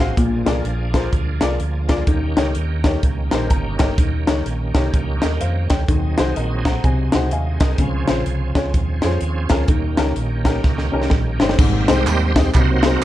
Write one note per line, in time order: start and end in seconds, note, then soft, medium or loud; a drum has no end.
0.00 0.15 A1 medium
0.00 0.16 F#3 medium
0.00 0.16 C4 medium
0.00 0.16 D#4 medium
0.00 0.12 F#4 medium
0.00 0.12 G#4 medium
0.00 2.04 G#4 medium
0.00 0.13 C5 medium
0.00 0.13 F5 medium
0.17 0.42 A#1 loud
0.17 0.90 A#2 medium
0.17 2.06 F3 medium
0.17 5.84 A#3 medium
0.17 2.06 D4 medium
0.17 kick loud
0.17 closed hi-hat loud
0.45 0.62 C2 medium
0.45 0.59 F4 medium
0.45 0.60 G#4 medium
0.45 0.60 A#4 medium
0.45 0.60 D5 medium
0.45 snare loud
0.45 closed hi-hat medium
0.65 1.05 A#1 medium
0.65 closed hi-hat medium
0.93 1.07 F4 medium
0.93 1.07 G#4 medium
0.93 1.08 A#4 medium
0.93 1.08 C5 medium
0.93 kick medium
0.93 snare loud
0.93 closed hi-hat medium
1.13 1.38 D2 medium
1.13 kick medium
1.13 closed hi-hat medium
1.41 1.58 C2 medium
1.41 1.54 F4 medium
1.41 1.55 G#4 medium
1.41 1.55 A#4 medium
1.41 1.55 D5 medium
1.41 snare loud
1.41 closed hi-hat medium
1.60 2.00 D2 medium
1.60 closed hi-hat medium
1.88 2.02 F4 medium
1.88 2.03 G#4 medium
1.88 2.03 A#4 medium
1.88 2.03 D5 medium
1.88 kick medium
1.88 snare loud
1.88 closed hi-hat medium
2.07 2.33 D#2 medium
2.07 2.80 D#3 medium
2.07 5.84 D#3 medium
2.07 5.84 C#4 medium
2.07 5.84 G4 medium
2.07 kick loud
2.07 closed hi-hat medium
2.36 2.53 C#2 medium
2.36 2.50 D#4 medium
2.36 2.50 G4 medium
2.36 2.51 A#4 medium
2.36 2.51 C#5 medium
2.36 snare loud
2.36 closed hi-hat medium
2.55 2.96 D#2 medium
2.55 closed hi-hat medium
2.84 2.97 D#4 medium
2.84 2.98 G4 medium
2.84 2.98 A#4 medium
2.84 2.99 C#5 medium
2.84 kick medium
2.84 snare loud
2.84 closed hi-hat medium
3.03 3.28 C#2 medium
3.03 kick medium
3.03 closed hi-hat medium
3.31 3.48 A#1 medium
3.31 3.45 D#4 medium
3.31 3.45 G4 medium
3.31 3.46 A#4 medium
3.31 3.46 C5 medium
3.31 snare loud
3.31 closed hi-hat medium
3.50 3.91 G1 medium
3.50 3.78 A#5 medium
3.50 kick medium
3.50 closed hi-hat medium
3.79 3.93 D#4 medium
3.79 3.93 G4 medium
3.79 3.93 A#4 medium
3.79 3.93 C#5 medium
3.79 3.97 D#5 medium
3.79 kick medium
3.79 snare loud
3.79 closed hi-hat medium
3.98 4.23 D#2 medium
3.98 4.71 D#3 medium
3.98 kick loud
3.98 closed hi-hat medium
4.27 4.43 C#2 medium
4.27 4.40 D#4 medium
4.27 4.40 G4 medium
4.27 4.41 A#4 medium
4.27 4.41 C#5 medium
4.27 snare loud
4.27 closed hi-hat medium
4.46 4.71 A#1 medium
4.46 closed hi-hat medium
4.74 4.90 C2 medium
4.74 4.88 D#4 medium
4.74 4.88 G4 medium
4.74 4.88 A#4 medium
4.74 4.88 C#5 medium
4.74 kick medium
4.74 snare loud
4.74 closed hi-hat medium
4.94 5.18 C#2 medium
4.94 kick medium
4.94 closed hi-hat medium
5.22 5.39 D#2 medium
5.22 5.40 A#4 medium
5.22 5.40 D#5 medium
5.22 snare loud
5.22 closed hi-hat medium
5.41 5.67 F2 medium
5.41 5.69 C5 medium
5.41 5.69 F5 medium
5.41 closed hi-hat medium
5.70 5.86 D2 medium
5.70 6.16 C#5 medium
5.70 6.15 G5 medium
5.70 kick loud
5.70 snare loud
5.70 closed hi-hat medium
5.88 6.13 D#2 medium
5.88 6.61 D#3 medium
5.88 7.77 F#3 medium
5.88 9.65 C4 medium
5.88 6.82 D#4 medium
5.88 9.65 G#4 medium
5.88 kick loud
5.88 closed hi-hat medium
6.17 6.34 C2 medium
6.17 6.31 D#4 medium
6.17 6.31 F#4 medium
6.17 6.31 G#4 medium
6.17 6.32 C5 medium
6.17 snare loud
6.17 closed hi-hat medium
6.36 6.77 A#1 medium
6.36 6.64 A#4 medium
6.36 6.64 D#5 medium
6.36 closed hi-hat medium
6.65 7.11 C5 medium
6.65 7.10 F#5 medium
6.65 6.82 A#5 medium
6.65 kick medium
6.65 snare loud
6.65 closed hi-hat medium
6.84 7.09 C2 medium
6.84 7.57 C3 medium
6.84 7.78 D#4 medium
6.84 7.11 G#5 medium
6.84 kick medium
6.84 closed hi-hat medium
7.12 7.29 C#2 medium
7.12 7.26 D#4 medium
7.12 7.26 F#4 medium
7.12 7.27 G#4 medium
7.12 7.27 C5 medium
7.12 7.30 F#5 medium
7.12 snare loud
7.12 closed hi-hat medium
7.31 7.56 D#2 medium
7.31 7.59 D#5 soft
7.31 7.59 F5 medium
7.31 7.60 G#5 medium
7.31 closed hi-hat medium
7.60 7.76 C2 medium
7.60 8.06 A#4 medium
7.60 7.77 D#5 medium
7.60 kick loud
7.60 snare loud
7.60 closed hi-hat medium
7.78 8.03 C#2 loud
7.78 8.52 C#3 medium
7.78 9.67 F3 medium
7.78 11.56 C#4 medium
7.78 kick loud
7.78 closed hi-hat medium
8.07 8.24 A#1 medium
8.07 8.21 C#4 medium
8.07 8.21 F4 medium
8.07 8.21 G#4 medium
8.07 8.22 C5 medium
8.07 snare loud
8.07 closed hi-hat medium
8.26 8.51 C2 medium
8.26 closed hi-hat medium
8.55 8.71 C#2 medium
8.55 8.68 C#4 medium
8.55 8.69 F4 medium
8.55 8.69 G#4 medium
8.55 8.69 C#5 medium
8.55 kick medium
8.55 snare loud
8.55 closed hi-hat medium
8.74 8.99 D#2 medium
8.74 kick medium
8.74 closed hi-hat medium
9.02 9.19 F2 medium
9.02 9.16 C#4 medium
9.02 9.16 F4 medium
9.02 9.17 G#4 medium
9.02 9.17 C5 medium
9.02 snare loud
9.02 closed hi-hat medium
9.21 9.46 D#2 medium
9.21 closed hi-hat medium
9.49 9.66 D2 medium
9.49 9.63 C#4 medium
9.49 9.64 F4 medium
9.49 9.64 G#4 medium
9.49 9.64 A#4 medium
9.49 kick loud
9.49 snare loud
9.49 closed hi-hat medium
9.68 9.94 D#2 loud
9.68 10.42 D#3 medium
9.68 11.57 D#3 medium
9.68 11.57 A#3 medium
9.68 11.57 G4 medium
9.68 kick loud
9.68 closed hi-hat medium
9.97 10.14 C#2 medium
9.97 10.11 C#4 medium
9.97 10.11 D#4 medium
9.97 10.12 G4 medium
9.97 10.12 A#4 medium
9.97 snare loud
9.97 closed hi-hat medium
10.16 10.57 A#1 medium
10.16 closed hi-hat medium
10.44 10.58 C#4 medium
10.44 10.59 D#4 medium
10.44 10.59 G4 medium
10.44 10.59 A#4 medium
10.44 kick medium
10.44 snare loud
10.44 closed hi-hat medium
10.64 10.89 C#2 medium
10.64 kick medium
10.64 snare soft
10.78 snare soft
10.92 11.09 C2 medium
10.92 11.06 C#4 medium
10.92 11.06 D#4 medium
10.92 11.06 G4 medium
10.92 11.07 A#4 medium
11.02 snare medium
11.10 11.37 A#1 medium
11.10 kick medium
11.10 snare medium
11.40 11.56 G1 medium
11.40 11.54 C#4 medium
11.40 11.54 D#4 medium
11.40 11.54 G4 medium
11.40 11.55 C5 medium
11.40 snare loud
11.49 snare medium
11.58 11.84 G#1 loud
11.58 12.32 G#2 medium
11.58 12.32 G3 medium
11.58 12.32 A#3 medium
11.58 12.33 C4 medium
11.58 kick loud
11.58 crash loud
11.58 tambourine medium
11.88 12.04 C2 loud
11.88 12.01 C4 medium
11.88 12.01 D#4 medium
11.88 12.02 G4 medium
11.88 12.50 G4 medium
11.88 12.02 G#4 medium
11.88 12.51 C5 medium
11.88 12.02 C5 medium
11.88 12.33 D#5 loud
11.88 snare loud
11.88 ride medium
11.88 tambourine medium
12.07 12.47 D#2 medium
12.07 clap medium
12.07 ride medium
12.07 tambourine medium
12.36 12.49 C4 medium
12.36 12.49 D#4 medium
12.36 12.49 G4 medium
12.36 12.50 G#4 medium
12.36 12.50 D#5 medium
12.36 kick medium
12.36 snare loud
12.36 ride soft
12.36 tambourine medium
12.54 12.95 C2 loud
12.54 13.04 C3 medium
12.54 13.04 F#3 medium
12.54 13.04 A#3 medium
12.54 13.04 C4 medium
12.54 12.83 D#4 medium
12.54 12.84 F#4 medium
12.54 12.85 C5 loud
12.54 kick medium
12.54 clap medium
12.54 ride medium
12.54 tambourine medium
12.83 12.97 C4 medium
12.83 12.97 D#4 medium
12.83 13.04 D#4 medium
12.83 12.97 F#4 medium
12.83 13.04 F#4 medium
12.83 12.97 G#4 medium
12.83 13.04 A#4 loud
12.83 12.98 C5 medium
12.83 snare loud
12.83 ride medium
12.83 tambourine medium